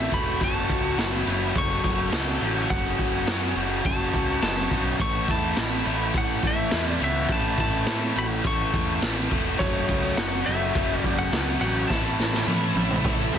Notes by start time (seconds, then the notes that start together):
Already playing: A2 E3 A3 C#4 E4 A4 E5
0.11 E1 A2 E3 A3 C#4 E4 F#4 A4 B5, kick, crash
0.40 F#1 F#2 C#3 F#3 C#4 F#4 A4, kick, crash
0.44 A5
0.69 C#2, kick, crash
0.97 F#1 F#2 C#3 F#3 C#4 F#4 A4, snare, crash
1.18 E4
1.24 F#1 F#2 C#3 F#3 C#4 F#4 G5, crash
1.28 A4
1.54 F#1 F#2 C#3 F#3 C#4 F#4 A4 C#6, kick, crash
1.84 F#1, kick, crash
2.12 C#2 F#2 C#3 F#3 C#4 F#4 A4, snare, crash
2.41 A1 F#2 C#3 F#3 C#4 F#4 A4, crash
2.69 F#1 F#2 C#3 F#3 C#4 F#4 A4 F#5, kick, crash
2.99 F#1, kick, crash
3.27 F#2 C#3 F#3 C#4 F#4 A4, snare, crash
3.55 F#1 F#2 C#3 F#3 C#4 F#4 A4, crash
3.85 F#1 F#2 C#3 F#3 C#4 F#4 A4 A5, kick, crash
4.13 C#2, kick, crash
4.42 F#1 F#2 C#3 F#3 C#4 F#4 A4 A5, snare, crash
4.57 snare
4.71 B1 F#2 C#3 F#3 C#4 F#4 A4, kick, crash
4.99 A1 A2 E3 A3 C#4 E4 A4 C#6, kick, crash
5.28 E2 E4 A5, kick, crash
5.57 A1 A2 E3 A3 C#4 E4 A4, snare, crash
5.85 A1 A2 E3 A3 C#4 E4 A4, crash
6.14 A1 A2 E3 A3 C#4 E4 A4 F#5, kick, crash
6.43 A1 A3, kick, crash
6.47 E5
6.71 E2 A2 E3 A3 C#4 E4 A4, snare, crash
6.85 G3, snare
6.92 D5
7.00 C#2 A2 E3 A3 B3 C#4 E4 A4, crash
7.04 E5
7.28 A1 A2 E3 A3 C#4 E4 A4 A5, kick, crash
7.57 A1 A5, kick, crash
7.63 E4
7.86 A2 E3 A3 C#4 E4 A4, snare, crash
8.15 A1 A2 E3 A3 C#4 E4 F#4 A4 B5, crash
8.44 A1 A2 E3 A3 C#4 E4 A4 C#6, kick, crash
8.73 E2, kick, crash
9.02 A1 A2 E3 A3 C#4 E4 A4, snare, crash
9.17 snare
9.30 E1 A2 E3 A3 C#4 E4 A4, kick, crash
9.58 F#1 F#2 C#3 F#3 A3 C#4 F#4 A4 C#5, kick, crash
9.89 C#2, kick, crash
10.17 F#1 F#2 C#3 F#3 C#4 F#4 A4 F#5, snare, crash
10.46 F#1 F#2 C#3 F#3 A3 C#4 F#4 A4 E5, crash
10.75 F#1 F#2 C#3 F#3 C#4 F#4 A4, kick, crash
10.96 G3
11.01 F#1 D5, kick, crash
11.19 C#4 F#5
11.32 C#2 F#2 C#3 F#3 C#4 F#4 A4, snare, crash
11.60 A1 F#2 C#3 F#3 C#4 F#4 A4 F#5, crash
11.88 A1 A2 E3 A3 C#4 E4 A4 A5, kick, snare
12.19 A1, snare
12.34 snare
12.46 A2 E3 A3 C#4 E4 A4, high tom
12.74 A1 A2 E3 A3 C#4 E4 A4, high tom
12.90 mid tom
13.03 A1 A2 E3 A3 C#4 E4 A4, kick, mid tom
13.33 E2, mid tom